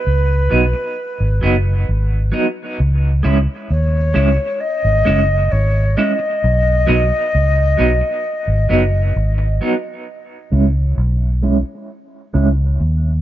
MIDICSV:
0, 0, Header, 1, 5, 480
1, 0, Start_track
1, 0, Key_signature, 4, "minor"
1, 0, Tempo, 910470
1, 1466, Time_signature, 4, 2, 24, 8
1, 6967, End_track
2, 0, Start_track
2, 0, Title_t, "Flute"
2, 0, Program_c, 0, 73
2, 0, Note_on_c, 0, 71, 92
2, 988, Note_off_c, 0, 71, 0
2, 1951, Note_on_c, 0, 73, 98
2, 2426, Note_on_c, 0, 75, 114
2, 2434, Note_off_c, 0, 73, 0
2, 2908, Note_on_c, 0, 73, 102
2, 2916, Note_off_c, 0, 75, 0
2, 3146, Note_on_c, 0, 75, 108
2, 3154, Note_off_c, 0, 73, 0
2, 5065, Note_off_c, 0, 75, 0
2, 6967, End_track
3, 0, Start_track
3, 0, Title_t, "Clean electric guitar"
3, 0, Program_c, 1, 27
3, 263, Note_on_c, 1, 54, 69
3, 268, Note_on_c, 1, 59, 77
3, 271, Note_on_c, 1, 63, 86
3, 336, Note_off_c, 1, 54, 0
3, 338, Note_off_c, 1, 59, 0
3, 340, Note_off_c, 1, 63, 0
3, 745, Note_on_c, 1, 54, 83
3, 753, Note_on_c, 1, 59, 98
3, 756, Note_on_c, 1, 63, 97
3, 817, Note_off_c, 1, 54, 0
3, 821, Note_off_c, 1, 59, 0
3, 822, Note_off_c, 1, 63, 0
3, 1222, Note_on_c, 1, 54, 77
3, 1227, Note_on_c, 1, 59, 75
3, 1232, Note_on_c, 1, 63, 84
3, 1295, Note_off_c, 1, 54, 0
3, 1298, Note_off_c, 1, 59, 0
3, 1300, Note_off_c, 1, 63, 0
3, 1703, Note_on_c, 1, 56, 77
3, 1709, Note_on_c, 1, 61, 79
3, 1712, Note_on_c, 1, 64, 90
3, 1776, Note_off_c, 1, 56, 0
3, 1779, Note_off_c, 1, 61, 0
3, 1780, Note_off_c, 1, 64, 0
3, 2183, Note_on_c, 1, 56, 80
3, 2186, Note_on_c, 1, 61, 84
3, 2191, Note_on_c, 1, 64, 90
3, 2256, Note_off_c, 1, 56, 0
3, 2257, Note_off_c, 1, 61, 0
3, 2260, Note_off_c, 1, 64, 0
3, 2663, Note_on_c, 1, 56, 77
3, 2668, Note_on_c, 1, 61, 82
3, 2673, Note_on_c, 1, 64, 90
3, 2736, Note_off_c, 1, 56, 0
3, 2738, Note_off_c, 1, 61, 0
3, 2741, Note_off_c, 1, 64, 0
3, 3149, Note_on_c, 1, 56, 81
3, 3151, Note_on_c, 1, 61, 75
3, 3155, Note_on_c, 1, 64, 79
3, 3219, Note_off_c, 1, 56, 0
3, 3219, Note_off_c, 1, 61, 0
3, 3222, Note_off_c, 1, 64, 0
3, 3620, Note_on_c, 1, 54, 90
3, 3623, Note_on_c, 1, 59, 78
3, 3629, Note_on_c, 1, 63, 93
3, 3694, Note_off_c, 1, 54, 0
3, 3696, Note_off_c, 1, 59, 0
3, 3698, Note_off_c, 1, 63, 0
3, 4097, Note_on_c, 1, 54, 78
3, 4104, Note_on_c, 1, 59, 79
3, 4107, Note_on_c, 1, 63, 76
3, 4173, Note_off_c, 1, 54, 0
3, 4176, Note_off_c, 1, 59, 0
3, 4177, Note_off_c, 1, 63, 0
3, 4582, Note_on_c, 1, 54, 80
3, 4585, Note_on_c, 1, 59, 96
3, 4591, Note_on_c, 1, 63, 85
3, 4655, Note_off_c, 1, 54, 0
3, 4656, Note_off_c, 1, 59, 0
3, 4659, Note_off_c, 1, 63, 0
3, 5066, Note_on_c, 1, 54, 66
3, 5070, Note_on_c, 1, 59, 77
3, 5075, Note_on_c, 1, 63, 80
3, 5137, Note_off_c, 1, 54, 0
3, 5138, Note_off_c, 1, 59, 0
3, 5141, Note_off_c, 1, 63, 0
3, 5544, Note_on_c, 1, 56, 72
3, 5544, Note_on_c, 1, 61, 74
3, 5550, Note_on_c, 1, 64, 76
3, 5615, Note_off_c, 1, 56, 0
3, 5615, Note_off_c, 1, 61, 0
3, 5618, Note_off_c, 1, 64, 0
3, 6023, Note_on_c, 1, 56, 77
3, 6027, Note_on_c, 1, 61, 85
3, 6032, Note_on_c, 1, 64, 85
3, 6095, Note_off_c, 1, 56, 0
3, 6097, Note_off_c, 1, 61, 0
3, 6099, Note_off_c, 1, 64, 0
3, 6504, Note_on_c, 1, 56, 84
3, 6506, Note_on_c, 1, 61, 89
3, 6512, Note_on_c, 1, 64, 89
3, 6575, Note_off_c, 1, 56, 0
3, 6576, Note_off_c, 1, 61, 0
3, 6579, Note_off_c, 1, 64, 0
3, 6967, End_track
4, 0, Start_track
4, 0, Title_t, "Fingered electric bass"
4, 0, Program_c, 2, 33
4, 35, Note_on_c, 2, 37, 91
4, 254, Note_off_c, 2, 37, 0
4, 276, Note_on_c, 2, 35, 86
4, 383, Note_off_c, 2, 35, 0
4, 635, Note_on_c, 2, 32, 78
4, 742, Note_off_c, 2, 32, 0
4, 755, Note_on_c, 2, 30, 92
4, 974, Note_off_c, 2, 30, 0
4, 996, Note_on_c, 2, 32, 79
4, 1214, Note_off_c, 2, 32, 0
4, 1476, Note_on_c, 2, 37, 101
4, 1694, Note_off_c, 2, 37, 0
4, 1716, Note_on_c, 2, 37, 100
4, 1823, Note_off_c, 2, 37, 0
4, 1953, Note_on_c, 2, 39, 80
4, 2173, Note_off_c, 2, 39, 0
4, 2193, Note_on_c, 2, 37, 92
4, 2301, Note_off_c, 2, 37, 0
4, 2555, Note_on_c, 2, 32, 86
4, 2662, Note_off_c, 2, 32, 0
4, 2673, Note_on_c, 2, 30, 91
4, 2893, Note_off_c, 2, 30, 0
4, 2914, Note_on_c, 2, 32, 86
4, 3133, Note_off_c, 2, 32, 0
4, 3395, Note_on_c, 2, 35, 103
4, 3613, Note_off_c, 2, 35, 0
4, 3634, Note_on_c, 2, 35, 92
4, 3741, Note_off_c, 2, 35, 0
4, 3873, Note_on_c, 2, 37, 93
4, 4092, Note_off_c, 2, 37, 0
4, 4111, Note_on_c, 2, 35, 82
4, 4220, Note_off_c, 2, 35, 0
4, 4469, Note_on_c, 2, 32, 77
4, 4578, Note_off_c, 2, 32, 0
4, 4590, Note_on_c, 2, 30, 87
4, 4811, Note_off_c, 2, 30, 0
4, 4830, Note_on_c, 2, 32, 80
4, 5051, Note_off_c, 2, 32, 0
4, 5548, Note_on_c, 2, 37, 94
4, 5769, Note_off_c, 2, 37, 0
4, 5787, Note_on_c, 2, 35, 82
4, 6124, Note_off_c, 2, 35, 0
4, 6509, Note_on_c, 2, 37, 92
4, 6730, Note_off_c, 2, 37, 0
4, 6750, Note_on_c, 2, 39, 82
4, 6967, Note_off_c, 2, 39, 0
4, 6967, End_track
5, 0, Start_track
5, 0, Title_t, "Muted clean electric guitar strokes"
5, 387, Note_on_c, 9, 29, 40
5, 440, Note_off_c, 9, 29, 0
5, 2302, Note_on_c, 9, 29, 53
5, 2354, Note_off_c, 9, 29, 0
5, 3264, Note_on_c, 9, 29, 49
5, 3316, Note_off_c, 9, 29, 0
5, 4224, Note_on_c, 9, 29, 40
5, 4277, Note_off_c, 9, 29, 0
5, 4946, Note_on_c, 9, 29, 47
5, 4999, Note_off_c, 9, 29, 0
5, 6624, Note_on_c, 9, 29, 42
5, 6676, Note_off_c, 9, 29, 0
5, 6967, End_track
0, 0, End_of_file